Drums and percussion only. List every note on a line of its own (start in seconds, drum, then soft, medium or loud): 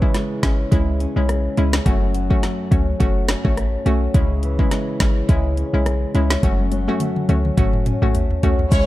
0.02 kick medium
0.14 snare medium
0.14 closed hi-hat medium
0.43 kick medium
0.43 snare loud
0.43 closed hi-hat soft
0.72 kick medium
0.72 closed hi-hat medium
1.00 closed hi-hat medium
1.29 cross-stick medium
1.29 closed hi-hat medium
1.57 closed hi-hat soft
1.73 snare loud
1.86 kick loud
1.86 closed hi-hat medium
2.15 closed hi-hat medium
2.31 kick medium
2.43 snare medium
2.43 closed hi-hat medium
2.72 kick medium
2.72 closed hi-hat soft
3.00 kick medium
3.00 closed hi-hat medium
3.29 snare loud
3.29 closed hi-hat medium
3.45 kick medium
3.57 cross-stick medium
3.57 closed hi-hat medium
3.86 closed hi-hat medium
4.14 kick loud
4.14 closed hi-hat medium
4.43 closed hi-hat medium
4.59 kick medium
4.71 snare medium
4.71 closed hi-hat medium
5.00 kick medium
5.00 snare loud
5.00 closed hi-hat soft
5.29 kick medium
5.29 closed hi-hat medium
5.57 closed hi-hat medium
5.86 cross-stick medium
5.86 closed hi-hat medium
6.15 closed hi-hat soft
6.30 snare loud
6.43 kick loud
6.43 closed hi-hat medium
6.43 high tom medium
6.59 high tom soft
6.72 closed hi-hat medium
6.72 high tom medium
6.88 high tom medium
7.00 closed hi-hat medium
7.00 mid tom medium
7.16 mid tom medium
7.29 closed hi-hat soft
7.29 mid tom medium
7.45 mid tom medium
7.57 kick medium
7.57 closed hi-hat medium
7.57 mid tom medium
7.73 mid tom medium
7.86 closed hi-hat medium
7.86 mid tom medium
8.02 mid tom medium
8.15 closed hi-hat medium
8.15 floor tom medium
8.31 floor tom medium
8.43 closed hi-hat soft
8.43 floor tom loud
8.59 floor tom medium
8.72 kick loud
8.72 closed hi-hat medium
8.72 crash loud
8.72 shaker medium